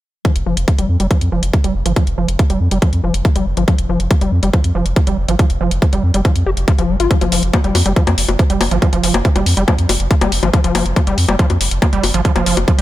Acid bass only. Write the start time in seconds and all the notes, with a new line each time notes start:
0.25 F3
0.46 F3
0.68 F3
0.79 G3
1.00 G3
1.11 F3
1.32 F3
1.53 F3
1.64 G3
1.86 F3
1.96 F3
2.18 F3
2.39 F3
2.50 G3
2.71 G3
2.82 F3
3.04 F3
3.25 F3
3.36 G3
3.57 F3
3.68 F3
3.89 F3
4.11 F3
4.21 G3
4.43 G3
4.54 F3
4.75 F3
4.96 F3
5.07 G3
5.29 F3
5.39 F3
5.61 F3
5.82 F3
5.93 G3
6.14 G3
6.25 F3
6.46 G4
6.68 F3
6.79 F3
6.89 G3
7.00 F4
7.11 F3
7.21 F3
7.32 F3
7.54 F3
7.64 G3
7.86 G3
7.96 F3
8.39 F3
8.50 G3
8.71 F3
8.82 F3
8.93 F3
9.04 F3
9.25 F3
9.36 G3
9.57 G3
9.68 F3
10.11 F3
10.21 G3
10.43 F3
10.54 F3
10.64 F3
10.75 F3
10.96 F3
11.07 G3
11.28 G3
11.39 F3
11.82 F3
11.93 G3
12.14 F3
12.25 F3
12.36 F3
12.46 F3
12.68 F3
12.78 G3